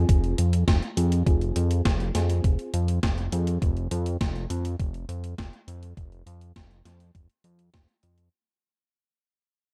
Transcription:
Already playing: C4 F4 G#4
0.09 F1, kick, closed hi-hat
0.24 closed hi-hat
0.38 F2, closed hi-hat
0.53 closed hi-hat
0.68 F1, kick, snare, closed hi-hat
0.82 closed hi-hat
0.97 F2 C4 F4 G#4, closed hi-hat
1.12 closed hi-hat
1.26 F1 C4 F4 G#4, kick, closed hi-hat
1.41 closed hi-hat
1.56 F2, closed hi-hat
1.71 closed hi-hat
1.85 F1, kick, snare, closed hi-hat
2.00 closed hi-hat
2.15 F2 C4 F4 G#4, snare, closed hi-hat
2.30 closed hi-hat
2.44 F1, kick, closed hi-hat
2.59 closed hi-hat
2.74 F2, closed hi-hat
2.88 closed hi-hat
3.03 F1, kick, snare, closed hi-hat
3.18 closed hi-hat
3.32 F2 C4 F4 G#4, closed hi-hat
3.47 closed hi-hat
3.62 F1, kick, closed hi-hat
3.77 closed hi-hat
3.91 F2, closed hi-hat
4.06 closed hi-hat
4.21 F1, kick, snare, closed hi-hat
4.36 closed hi-hat
4.50 F2, closed hi-hat
4.65 closed hi-hat
4.80 F1, kick, closed hi-hat
4.94 closed hi-hat
5.09 F2, closed hi-hat
5.24 closed hi-hat
5.38 F1, kick, snare, closed hi-hat
5.53 closed hi-hat
5.68 F2, closed hi-hat
5.83 closed hi-hat
5.97 F1, kick, closed hi-hat
6.12 closed hi-hat
6.26 F2, closed hi-hat
6.41 closed hi-hat
6.56 F1, kick, snare, closed hi-hat
6.71 closed hi-hat
6.85 F2, snare, closed hi-hat
7.00 closed hi-hat
7.15 F1, kick, closed hi-hat
7.30 closed hi-hat
7.44 F2, closed hi-hat
7.59 closed hi-hat
7.74 F1, kick, snare, closed hi-hat
7.88 closed hi-hat
8.03 F2, closed hi-hat
8.18 closed hi-hat

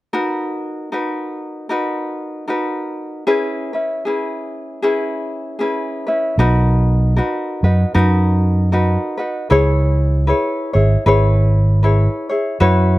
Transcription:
0.13 D#4 F#4 A#4 B4
0.92 D#4 F#4 A#4 B4
1.69 D#4 F#4 A#4 B4
2.48 D#4 F#4 A#4 B4
3.27 C#4 E4 G#4 B4
3.73 C#4 E4 B4
4.05 C#4 E4 G#4 B4
4.82 C#4 E4 G#4 B4
5.59 C#4 E4 G#4 B4
6.07 C#4 E4 B4
6.38 B1 D#4 F#4 A#4 B4
7.16 D#4 F#4 A#4 B4
7.63 F#2 D#4 F#4 B4
7.94 F#2 D#4 F#4 A#4 B4
8.72 D#4 F#4 A#4 B4
9.17 D#4 F#4 B4
9.50 C#2 E4 G#4 B4 C#5
10.27 E4 G#4 B4 C#5
10.73 G#1 E4 G#4 C#5
11.06 G#1 E4 G#4 B4 C#5
11.83 E4 G#4 B4 C#5
12.29 E4 G#4 C#5
12.60 F#2 E4 F#4 B4 C#5

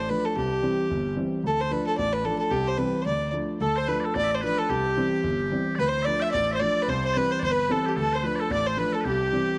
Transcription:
0.00 C5
0.10 F3 A3 D4 B4
0.25 A4
0.36 C2 G4
0.62 E3 G3 C4
0.91 G1
1.16 E3 G3 C4
1.44 D2 A4
1.61 C5
1.71 F3 A3 D4 B4
1.87 A4
1.98 A1 D5
2.13 B4
2.25 F3 A3 D4 A4
2.39 A4
2.51 C2 G4
2.68 C5
2.78 E3 G3 C4 B4
3.02 C5
3.06 D2 D5
3.32 F3 A3 D4
3.60 D2 A4
3.76 C5
3.88 F3 A3 D4 B4
4.00 D5
4.04 A4
4.14 A1 D5
4.24 E5
4.31 C5 D5
4.41 F3 A3 D4 B4
4.58 A4
4.69 C2 G4
4.96 E3 G3 C4
5.24 G1
5.52 E3 G3 C4
5.75 D2 B4 D5
5.80 B4
5.87 C5
6.02 F3 D5 E5
6.07 A3 D4 D5
6.20 E5 G5
6.32 A1 D5
6.52 C5 E5
6.56 C5
6.60 F3 A3 D4 D5
6.83 B4
6.88 C2 C5
7.05 C5
7.13 E3 G3 C4 B4 D5
7.18 B4
7.31 C5
7.39 G1 D5
7.44 C5
7.50 B4
7.69 E3 G3 C4 A4
7.86 G4
7.96 D2 A4
8.00 A4
8.13 C5
8.23 F3 A3 D4 B4
8.36 D5
8.40 A4
8.50 A1 D5
8.67 C5
8.77 F3 A3 D4 B4
8.93 A4
9.01 G4 B4
9.05 C2 G4
9.32 E3 G3 C4

